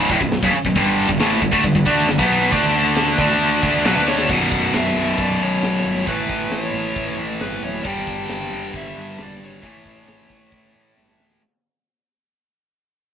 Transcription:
0.10 0.20 D1 loud
0.10 0.20 D2 loud
0.10 0.20 A2 loud
0.10 kick loud
0.10 open hi-hat medium
0.21 0.41 B0 medium
0.21 0.38 B1 medium
0.21 0.38 F#2 medium
0.21 kick medium
0.32 snare loud
0.32 open hi-hat medium
0.43 0.53 F#1 medium
0.43 0.53 F#2 medium
0.43 0.53 C#3 loud
0.43 kick loud
0.54 muted fingered electric bass stroke soft
0.54 muted distorted electric guitar stroke medium
0.54 open hi-hat medium
0.65 0.75 B0 medium
0.65 0.75 B1 medium
0.65 0.76 F#2 medium
0.65 kick medium
0.76 1.06 G1 loud
0.76 1.07 G2 loud
0.76 1.07 D3 loud
0.76 1.09 G3 loud
0.76 kick loud
0.76 open hi-hat medium
0.98 open hi-hat medium
1.08 1.19 G1 medium
1.08 1.19 G2 medium
1.08 1.20 D3 medium
1.08 kick medium
1.19 1.40 A1 medium
1.19 1.41 A2 loud
1.19 1.41 E3 loud
1.19 1.41 A3 loud
1.19 snare loud
1.19 open hi-hat medium
1.42 1.52 G1 medium
1.42 1.53 G2 medium
1.42 1.51 D3 medium
1.42 kick medium
1.42 open hi-hat medium
1.52 1.63 D2 medium
1.52 1.63 D3 medium
1.52 1.63 A3 medium
1.52 kick medium
1.64 1.74 G1 medium
1.64 1.74 G2 medium
1.64 1.74 D3 medium
1.64 kick loud
1.64 open hi-hat medium
1.75 1.85 G1 medium
1.75 1.86 G2 medium
1.75 1.85 D3 medium
1.75 kick medium
1.86 2.06 D2 loud
1.86 2.07 D3 medium
1.86 2.07 A3 loud
1.86 2.08 D4 loud
1.86 kick medium
1.86 open hi-hat medium
2.07 2.18 G1 medium
2.07 2.19 G2 medium
2.07 2.18 D3 medium
2.07 snare loud
2.07 open hi-hat medium
2.18 2.50 B1 medium
2.18 2.51 B2 loud
2.18 2.51 F#3 loud
2.18 2.52 B3 loud
2.18 kick loud
2.30 open hi-hat medium
2.51 3.15 D2 loud
2.51 3.17 D3 loud
2.51 3.17 A3 loud
2.51 3.18 D4 loud
2.51 kick loud
2.51 open hi-hat medium
2.74 open hi-hat medium
2.96 snare loud
2.96 open hi-hat medium
3.18 3.60 D2 loud
3.18 3.62 D3 loud
3.18 3.62 A3 loud
3.18 3.62 D4 loud
3.18 kick loud
3.18 open hi-hat medium
3.41 open hi-hat loud
3.63 3.84 D2 loud
3.63 3.84 D3 medium
3.63 3.85 A3 loud
3.63 3.85 D4 loud
3.63 kick loud
3.63 open hi-hat medium
3.85 3.95 B1 loud
3.85 3.95 B2 loud
3.85 3.96 F#3 loud
3.85 4.09 B4 medium
3.85 snare loud
3.85 open hi-hat medium
3.96 4.27 D2 medium
3.96 4.29 D3 medium
3.96 4.29 A3 loud
3.96 4.29 D4 medium
4.08 4.28 C#5 loud
4.08 snare medium
4.18 snare medium
4.29 4.48 B0 medium
4.29 6.05 B1 medium
4.29 6.06 F#2 loud
4.29 6.07 B2 loud
4.29 4.75 F#5 loud
4.29 kick loud
4.29 crash loud
4.51 4.70 B0 medium
4.51 kick loud
4.73 4.92 B0 medium
4.73 snare loud
4.73 open hi-hat medium
4.77 5.19 E5 medium
4.96 5.14 B0 medium
5.18 5.37 B0 medium
5.18 5.42 D5 loud
5.18 kick loud
5.18 open hi-hat medium
5.40 5.59 B1 medium
5.40 6.04 C#5 medium
5.63 5.81 A1 medium
5.63 snare loud
5.63 open hi-hat medium
5.84 6.03 G1 medium
6.06 6.26 A1 medium
6.06 7.83 A2 loud
6.06 7.84 E3 loud
6.06 7.84 A3 medium
6.06 6.54 B4 medium
6.06 kick loud
6.06 open hi-hat medium
6.29 6.48 A1 medium
6.29 kick medium
6.51 6.70 A1 medium
6.51 7.15 C#5 medium
6.51 snare loud
6.51 open hi-hat medium
6.74 6.92 A1 loud
6.96 7.15 A1 medium
6.96 kick loud
6.96 open hi-hat medium
7.17 7.36 A1 medium
7.40 7.59 G1 medium
7.40 7.61 B4 medium
7.40 snare loud
7.40 open hi-hat medium
7.52 snare soft
7.62 7.81 D1 medium
7.62 7.86 C#5 loud
7.83 8.04 G1 medium
7.83 9.61 G2 medium
7.83 9.61 D3 loud
7.83 9.62 G3 loud
7.83 8.31 G5 loud
7.83 kick loud
7.83 open hi-hat medium
8.07 8.26 G1 loud
8.07 kick medium
8.29 8.48 G1 medium
8.29 8.77 G5 medium
8.29 snare loud
8.29 open hi-hat medium
8.52 8.70 G1 medium
8.74 8.92 G1 medium
8.74 9.21 E5 loud
8.74 kick loud
8.74 open hi-hat medium
8.96 9.15 G2 medium
9.18 9.37 E1 medium
9.18 snare loud
9.18 open hi-hat medium
9.23 9.43 D5 medium
9.41 9.59 G#1 medium
9.45 10.95 C#5 medium
9.62 9.81 A1 medium
9.62 11.39 A2 medium
9.62 11.40 E3 medium
9.62 11.40 A3 loud
9.62 kick loud
9.62 open hi-hat medium
9.85 10.04 A1 medium
9.85 kick medium
10.08 10.26 A1 medium
10.08 snare loud
10.08 open hi-hat medium
10.30 10.48 A1 medium
10.30 kick medium
10.52 10.71 A1 medium
10.52 kick loud
10.52 open hi-hat medium
10.75 10.93 A2 medium
10.97 11.15 G1 medium
10.97 snare medium
11.08 snare medium
11.19 11.37 D2 medium
11.19 snare medium
11.31 snare medium

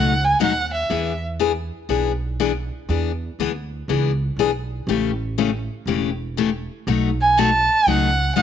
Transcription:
0.00 0.32 C#2 medium
0.00 0.12 B2 medium
0.00 0.12 F#3 medium
0.00 0.12 A3 medium
0.00 0.12 D#4 medium
0.00 0.12 F#4 medium
0.00 0.26 F#5 medium
0.24 0.41 G#5 medium
0.40 0.82 D#2 medium
0.40 0.51 B2 medium
0.40 0.52 F#3 medium
0.40 0.52 A3 medium
0.40 0.52 D#4 medium
0.40 0.52 F#4 medium
0.40 0.70 F#5 medium
0.74 1.19 E5 medium
0.90 1.69 E2 medium
0.90 1.11 E3 medium
0.90 1.12 B3 medium
0.90 1.12 D4 medium
0.90 1.12 G#4 medium
1.39 1.51 E3 medium
1.39 1.51 B3 medium
1.39 1.51 D4 medium
1.39 1.51 G#4 medium
1.89 2.68 B1 medium
1.89 2.11 E3 medium
1.89 2.11 B3 medium
1.89 2.11 D4 medium
1.89 2.11 G#4 medium
2.40 2.51 E3 medium
2.40 2.51 B3 medium
2.40 2.51 D4 medium
2.40 2.51 G#4 medium
2.89 3.28 E2 medium
2.89 3.10 E3 medium
2.89 3.11 B3 medium
2.89 3.11 D4 medium
2.89 3.11 G#4 medium
3.39 3.81 D2 medium
3.39 3.50 E3 medium
3.39 3.51 B3 medium
3.39 3.51 D4 medium
3.39 3.51 G#4 medium
3.88 4.30 C#2 medium
3.88 4.10 E3 medium
3.88 4.10 B3 medium
3.88 4.11 D4 medium
3.88 4.11 G#4 medium
4.36 4.79 B1 medium
4.36 4.50 E3 medium
4.36 4.50 B3 medium
4.36 4.50 D4 medium
4.36 4.50 G#4 medium
4.87 5.67 A1 medium
4.87 5.10 C#3 medium
4.87 5.10 E3 medium
4.87 5.10 A3 medium
4.87 5.10 C#4 medium
4.87 5.10 G4 medium
5.38 5.49 C#3 medium
5.38 5.49 E3 medium
5.38 5.49 A3 medium
5.38 5.49 C#4 medium
5.38 5.49 G4 medium
5.86 6.66 E1 medium
5.86 6.09 C#3 medium
5.86 6.09 E3 medium
5.86 6.09 A3 medium
5.86 6.10 C#4 medium
5.86 6.09 G4 medium
6.37 6.49 C#3 medium
6.37 6.49 E3 medium
6.37 6.49 A3 medium
6.37 6.49 C#4 loud
6.37 6.49 G4 medium
6.87 7.67 B1 loud
6.87 7.09 B2 medium
6.87 7.09 F#3 medium
6.87 7.09 A3 medium
6.87 7.09 D#4 medium
6.87 7.09 F#4 medium
7.21 7.40 G#5 medium
7.37 7.49 B2 medium
7.37 7.49 F#3 medium
7.37 7.49 A3 medium
7.37 7.49 D#4 medium
7.37 7.49 F#4 loud
7.37 7.90 A5 loud
7.87 8.29 C#2 medium
7.87 8.09 B2 medium
7.87 8.09 F#3 medium
7.87 8.09 A3 medium
7.87 8.09 D#4 medium
7.87 8.09 F#4 medium
7.87 8.36 F#5 loud
8.36 8.42 D#2 medium
8.36 8.42 B2 medium
8.36 8.42 F#3 medium
8.36 8.42 A3 medium
8.36 8.42 D#4 medium
8.36 8.42 F#4 medium
8.36 8.42 F#5 medium

